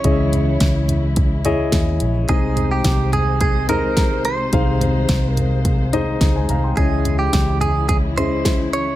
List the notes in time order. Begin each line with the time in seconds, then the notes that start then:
Already playing: C#3 E3 G#3 C#4 E4 G#4 C#5 D#5
0.04 C#2 C#3 E4 G#4 C#5 D#5, kick, closed hi-hat
0.11 E5
0.33 closed hi-hat, floor tom
0.60 C#2, kick, snare, closed hi-hat
0.88 closed hi-hat, floor tom
1.16 kick, closed hi-hat
1.44 E4 G#4 C#5 D#5 G#5, closed hi-hat, floor tom
1.72 D#2, kick, snare, closed hi-hat
2.00 A#1, closed hi-hat
2.29 C2 C3 D#3 G#3 D#4 G#4 C5 D#5, kick, closed hi-hat
2.56 closed hi-hat, floor tom
2.71 G4
2.84 C2, kick, snare, closed hi-hat
3.12 G#4, closed hi-hat, floor tom
3.41 G#4, kick, closed hi-hat
3.69 D#4 G#4 A#4 C5 D#5, closed hi-hat, floor tom
3.97 kick, snare, closed hi-hat
4.25 C5, closed hi-hat
4.53 C2 C3 D#4 G#4 C5 F5, kick, closed hi-hat
4.81 closed hi-hat, floor tom
5.09 C2, kick, snare, closed hi-hat
5.33 A#4, floor tom
5.37 closed hi-hat
5.65 kick, closed hi-hat
5.93 D#4 G#4 C5 D#5, closed hi-hat, floor tom
6.21 C#2, kick, snare, closed hi-hat
6.36 D#5 G#5
6.49 C2 F5 A#5, closed hi-hat, floor tom
6.64 G5 C6
6.76 C#2 C#3 E3 G#3 E4 G#4 C#5 D#5, kick, closed hi-hat
7.05 closed hi-hat, floor tom
7.19 G4
7.33 C#2, kick, snare, closed hi-hat
7.61 G#4, closed hi-hat, floor tom
7.89 G#4, kick, closed hi-hat
8.17 C#4 E4 G#4 C5 D#5, closed hi-hat, floor tom
8.45 kick, snare, closed hi-hat
8.73 C#5, closed hi-hat